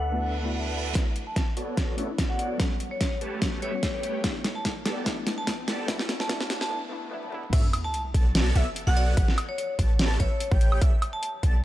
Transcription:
Already playing: 808-style bass D2, synth pluck B3 E4 B4, supersaw synth D4 A4 B4 E5 F#5, vibraphone F#5
0.12 synth pluck A3 B3 E4 F#4, reverse cymbal
0.43 synth pluck A3 B3 E4 F#4
0.93 synth pluck A3 D4 E4, supersaw synth B3 F#4 C#5 D5 E5, kick, snare, closed hi-hat, riser
1.16 closed hi-hat
1.27 vibraphone A5
1.36 kick, snare, closed hi-hat
1.57 supersaw synth B3 F#4 A4 C#5 D5 A5, closed hi-hat
1.77 kick, snare, closed hi-hat
1.97 synth pluck A3 C#4 D4 E4, supersaw synth B3 F#4 A4 C#5 D5 E5, closed hi-hat
2.07 synth pluck A3 C#4 D4 E4
2.18 kick, snare, closed hi-hat
2.30 supersaw synth B3 F#4 A4 C#5 D5 F#5, vibraphone F#5
2.39 vibraphone D5, closed hi-hat
2.57 synth pluck G3 B3 C#4, supersaw synth A3, kick, snare, closed hi-hat
2.61 synth pluck A4
2.80 closed hi-hat
2.91 vibraphone C#5
3.01 vibraphone C#5, kick, snare, closed hi-hat
3.21 supersaw synth A3 G4 B4 C#5 A5, closed hi-hat
3.41 synth pluck G3 B3 C#4 F#4, kick, snare, closed hi-hat
3.62 supersaw synth A3 G4 B4 C#5 E5, vibraphone C#5, closed hi-hat
3.71 synth pluck G3 B3 C#4
3.75 synth pluck F#4
3.83 kick, snare, closed hi-hat
3.94 supersaw synth A3 G4 B4 C#5 G5
4.03 closed hi-hat
4.22 synth pluck A3 B3 D4, kick, snare, closed hi-hat
4.26 synth pluck E4
4.44 snare, closed hi-hat
4.55 vibraphone A5
4.65 kick, snare, closed hi-hat
4.86 supersaw synth B3 G4 A4 D5 A5, snare, closed hi-hat
5.04 synth pluck A3 B3 D4, supersaw synth B3 G4 A4 D5 E5, kick, snare, closed hi-hat
5.08 synth pluck E4
5.27 snare, closed hi-hat
5.38 vibraphone A5
5.47 kick, snare, closed hi-hat
5.68 supersaw synth B3 G4 A4 D5 A5, snare, closed hi-hat
5.86 synth pluck A3 B3 D4, supersaw synth B3 F#4 E5, kick, snare, closed hi-hat
5.90 synth pluck E4
5.99 snare
6.09 snare, closed hi-hat
6.20 vibraphone A5, snare
6.27 synth pluck A3 B3 D4, supersaw synth B3 F#4 A4 D5 E5, kick, snare, closed hi-hat
6.31 synth pluck E4
6.41 snare
6.50 snare, closed hi-hat
6.61 vibraphone A5, snare
6.69 synth pluck A3 B3 D4 E4, swell
6.89 synth pluck A3 B3 D4 E4
7.10 synth pluck A3 B3 D4, high tom
7.14 synth pluck E4
7.23 high tom
7.30 synth pluck A3 B3 D4, mid tom
7.34 synth pluck E4
7.43 mid tom
7.53 808-style bass B1, supersaw synth B3 F#4 A4 C#5 D5 E5, digital synth lead E5, kick, closed hi-hat, crash, sub drop
7.73 closed hi-hat, high woodblock
7.84 vibraphone A5
7.94 closed hi-hat
8.14 808-style bass B1, supersaw synth B3 F#4 A4 C#5 D5 A5, digital synth lead A5, kick, closed hi-hat
8.35 snare, closed hi-hat
8.56 808-style bass B1, supersaw synth B3 F#4 A4 C#5 D5 E5, digital synth lead E5, closed hi-hat
8.76 closed hi-hat
8.87 808-style bass B1, supersaw synth B3 F#4 A4 C#5 D5 F#5, vibraphone F#5, digital synth lead F#5
8.97 vibraphone D5, closed hi-hat
9.17 808-style bass A1, supersaw synth A3 G4 B4 C#5 F#5, digital synth lead F#5, kick, closed hi-hat
9.28 snare
9.38 closed hi-hat, high woodblock
9.49 vibraphone C#5
9.58 vibraphone C#5, closed hi-hat
9.79 808-style bass A1, supersaw synth A3 G4 B4 C#5 A5, digital synth lead A5, kick, closed hi-hat
9.99 snare, closed hi-hat
10.20 808-style bass A1, supersaw synth A3 G4 B4 C#5 E5, vibraphone C#5, digital synth lead E5, kick, closed hi-hat
10.40 closed hi-hat
10.51 808-style bass A1, supersaw synth A3 G4 B4 C#5 G5, digital synth lead G5, kick
10.61 closed hi-hat
10.72 high woodblock
10.81 808-style bass B1, supersaw synth B3 G4 A4 D5 E5, digital synth lead E5, kick, closed hi-hat
11.02 closed hi-hat, high woodblock
11.13 vibraphone A5
11.23 closed hi-hat
11.43 808-style bass B1, supersaw synth B3 G4 A4 D5 A5, digital synth lead A5, kick, closed hi-hat

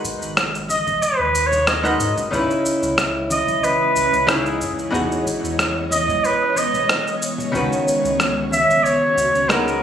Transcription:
Already playing: hollow-body jazz guitar G#3 D#4 F#4 A#4 B4
0.04 kick, shaker
0.21 analog synth bass G#1, shaker
0.37 cross-stick, shaker
0.55 shaker
0.69 flugelhorn D#5, high conga, shaker
0.87 analog synth bass F#1, kick, high conga, low conga, shaker
1.02 flugelhorn B4, shaker
1.19 analog synth bass D#2
1.35 shaker
1.46 flugelhorn C#5
1.52 low conga, shaker
1.67 flugelhorn D#5, cross-stick, shaker
1.83 hollow-body jazz guitar G#3 D#4 F#4 A#4 B4, shaker
2.00 analog synth bass G#2, shaker
2.17 analog synth bass F#1, low conga, shaker
2.31 analog synth bass C#2, hollow-body jazz guitar C#3 C#4 D#4 E4, ambient pad E3 G#3 C#4 C#5 D#5, kick, shaker
2.35 hollow-body jazz guitar B4
2.51 shaker
2.65 shaker
2.82 analog synth bass C#2, shaker
2.98 cross-stick, shaker
3.30 flugelhorn D#5, high conga, shaker
3.47 analog synth bass B1, high conga, shaker
3.64 flugelhorn B4, shaker
3.96 analog synth bass C#2, kick, shaker
4.13 analog synth bass C#2, shaker
4.27 hollow-body jazz guitar C#3 C#4 D#4 E4 B4, flugelhorn G#4, cross-stick, shaker
4.46 shaker
4.61 analog synth bass F#2, kick, shaker
4.79 shaker
4.91 analog synth bass E2, hollow-body jazz guitar E3 B3 D#4 F#4 G#4, ambient pad B3, kick, shaker
5.12 shaker
5.26 kick, shaker
5.44 analog synth bass E2, shaker
5.59 cross-stick, shaker
5.91 flugelhorn D#5, high conga, shaker
6.08 analog synth bass B1, kick, high conga, low conga, shaker
6.24 flugelhorn B4, shaker
6.56 analog synth bass E1, flugelhorn D#5, shaker
6.74 low conga, shaker
6.89 cross-stick, shaker
7.07 shaker
7.22 shaker
7.38 low conga, shaker
7.52 analog synth bass C#2, hollow-body jazz guitar C#3 D#3 C#4 F#4, ambient pad C#4 F#4, kick, shaker
7.56 hollow-body jazz guitar B4
7.72 shaker
7.88 shaker
8.05 analog synth bass C#2, shaker
8.20 cross-stick, shaker
8.51 flugelhorn E5, high conga, shaker
8.69 analog synth bass B1, high conga, shaker
8.84 flugelhorn C#5, shaker
9.17 analog synth bass C#2, kick, shaker
9.34 analog synth bass C#2, shaker
9.49 hollow-body jazz guitar G#3 B3 D#4 F#4 A#4, flugelhorn A#4, cross-stick, shaker
9.68 shaker

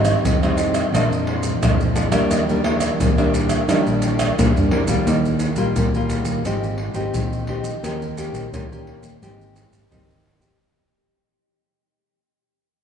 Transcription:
Already playing: fingered electric bass G#1, nylon-string guitar G#2 G3 C4 D#4
0.05 pandeiro, tamborim, maracas, surdo
0.24 fingered electric bass F2, nylon-string guitar D#3, pandeiro, maracas, surdo
0.43 nylon-string guitar G3 C4 D#4, pandeiro, tamborim, maracas
0.58 pandeiro, maracas, surdo
0.74 pandeiro, tamborim, maracas
0.92 fingered electric bass A#1, nylon-string guitar A#2 F3 G#3 D4, pandeiro, tamborim, maracas, surdo
1.10 fingered electric bass F2, pandeiro, maracas
1.27 pandeiro
1.43 pandeiro, maracas, surdo
1.62 fingered electric bass A#1, nylon-string guitar F2 F3 G#3 D4, pandeiro, tamborim, maracas, surdo
1.81 pandeiro, maracas
1.95 nylon-string guitar F3 G#3 D4, pandeiro, maracas
2.11 nylon-string guitar G3 A#3 D4, pandeiro, tamborim, maracas, surdo
2.31 fingered electric bass D#2, nylon-string guitar D#3, pandeiro, tamborim, maracas, surdo
2.49 nylon-string guitar G3 A#3 D4, pandeiro, maracas, surdo
2.64 nylon-string guitar G3 A#3 D4, pandeiro, tamborim
2.80 pandeiro, tamborim, maracas, surdo
3.00 fingered electric bass D#2, nylon-string guitar A#2, pandeiro, maracas, surdo
3.17 nylon-string guitar G3 A#3 D4, pandeiro, tamborim, maracas
3.34 pandeiro, maracas, surdo
3.49 pandeiro, tamborim, maracas
3.68 fingered electric bass D#3, nylon-string guitar D#3 G3 A#3 D4, pandeiro, tamborim, maracas, surdo
3.87 fingered electric bass A#1, pandeiro, maracas
4.02 pandeiro, maracas
4.19 pandeiro, tamborim, maracas, surdo
4.38 fingered electric bass A#2, nylon-string guitar A#2 G3 A#3 D4, pandeiro, maracas, surdo
4.56 fingered electric bass G2, surdo, pandeiro, maracas
4.71 fingered electric bass F2, nylon-string guitar G3 A#3 D4, pandeiro
4.87 fingered electric bass D#2, nylon-string guitar G3 A#3 F4, pandeiro, maracas, surdo
5.07 fingered electric bass D#2, nylon-string guitar D#3, pandeiro, maracas, surdo
5.25 pandeiro, maracas, surdo
5.39 pandeiro, maracas
5.56 fingered electric bass A#1, nylon-string guitar G3 A#3 F4, pandeiro, maracas, surdo
5.76 fingered electric bass D#2, nylon-string guitar A#2, pandeiro, maracas, surdo
5.94 nylon-string guitar G3 A#3 F4, pandeiro, maracas
6.10 pandeiro, maracas, surdo
6.25 fingered electric bass D#2, pandeiro, maracas
6.45 fingered electric bass G#1, nylon-string guitar G#3 C4 D#4 G4, pandeiro, maracas, surdo
6.64 pandeiro, maracas
6.78 pandeiro
6.94 fingered electric bass G#1, nylon-string guitar C4 D#4 G4, pandeiro, maracas, surdo
7.14 fingered electric bass A#1, nylon-string guitar D#3, pandeiro, maracas, surdo
7.33 pandeiro, maracas
7.47 nylon-string guitar C4 D#4 G4, pandeiro
7.64 pandeiro, maracas, surdo
7.83 fingered electric bass D#2, nylon-string guitar D#3 A#3 C#4 G4, pandeiro, maracas, surdo
8.02 pandeiro, maracas, surdo
8.17 nylon-string guitar A#3 C#4 G4, pandeiro, maracas
8.33 fingered electric bass A#1, pandeiro, maracas, surdo
8.52 fingered electric bass D#2, nylon-string guitar A#2 A#3 C#4 G4, pandeiro, maracas, surdo
8.71 nylon-string guitar A#3 C#4 G4, pandeiro, maracas
8.87 pandeiro, surdo
9.03 fingered electric bass D#2, pandeiro, maracas
9.21 fingered electric bass G#1, nylon-string guitar G#3 C4 D#4 G4, pandeiro, maracas, surdo
9.41 pandeiro, maracas
9.56 pandeiro, maracas
9.71 fingered electric bass G#1, pandeiro, maracas, surdo
9.91 fingered electric bass G#1, nylon-string guitar D#3 C4 D#4 G4, pandeiro, maracas, surdo
10.10 pandeiro, maracas
10.26 pandeiro
10.40 nylon-string guitar C4 D#4 G4, pandeiro, maracas, surdo

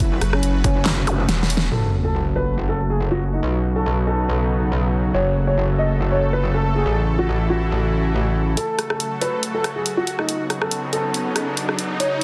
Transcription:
Already playing: wobble bass F#1, supersaw synth C#3 F#3 A3 F#4 B4, grand piano E4
0.00 kick, closed hi-hat
0.21 wobble bass F#1, cross-stick, closed hi-hat
0.33 grand piano C#4, cross-stick
0.43 closed hi-hat
0.64 wobble bass F#1, grand piano C#4, kick, closed hi-hat
0.86 snare, clap, closed hi-hat
1.07 cross-stick, closed hi-hat, zap
1.29 wobble bass E1, snare, closed hi-hat
1.43 snare
1.50 open hi-hat
1.57 snare
1.71 wobble bass F#1, supersaw synth C#3 F#3 A3 F#4 A4, grand piano A4, sub drop
2.04 grand piano A4
2.36 grand piano B4
2.69 grand piano A4
2.79 closed hi-hat
2.90 grand piano G#4
3.12 grand piano F#4
3.21 closed hi-hat
3.33 grand piano D#4
3.43 wobble bass B1, supersaw synth F#3 B3 D#4
3.76 grand piano A4
4.07 grand piano A4, closed hi-hat
4.29 closed hi-hat
4.50 closed hi-hat
4.93 closed hi-hat
5.14 wobble bass F#1, supersaw synth A3 A4, grand piano C#5, closed hi-hat
5.36 closed hi-hat
5.47 grand piano C#5
5.57 closed hi-hat
5.78 grand piano D#5, closed hi-hat
6.00 closed hi-hat
6.12 grand piano C#5
6.21 closed hi-hat
6.33 grand piano B4
6.43 closed hi-hat
6.54 grand piano A4
6.64 closed hi-hat
6.76 grand piano G#4
6.86 wobble bass A1, supersaw synth E3 E4, closed hi-hat
7.07 closed hi-hat
7.19 grand piano F#4
7.29 closed hi-hat
7.50 grand piano F#4, closed hi-hat
7.71 closed hi-hat
7.93 closed hi-hat
8.14 closed hi-hat
8.36 closed hi-hat
8.57 supersaw synth C#3 F#3 A3 F#4 A4, grand piano A4, closed hi-hat, riser
8.79 cross-stick, closed hi-hat
8.90 grand piano A4, cross-stick
9.00 closed hi-hat
9.21 grand piano B4, closed hi-hat
9.43 closed hi-hat
9.54 grand piano A4
9.64 cross-stick, closed hi-hat
9.76 grand piano G#4
9.86 closed hi-hat
9.97 grand piano F#4
10.07 closed hi-hat
10.19 grand piano D#4, cross-stick
10.29 supersaw synth F#3 B3 D#4, closed hi-hat
10.50 cross-stick, closed hi-hat
10.62 grand piano A4, cross-stick
10.71 closed hi-hat
10.93 grand piano A4, closed hi-hat
11.14 closed hi-hat
11.36 cross-stick, closed hi-hat
11.57 closed hi-hat
11.69 cross-stick
11.79 closed hi-hat
12.00 supersaw synth A3 F#4 A4, grand piano C#5, closed hi-hat

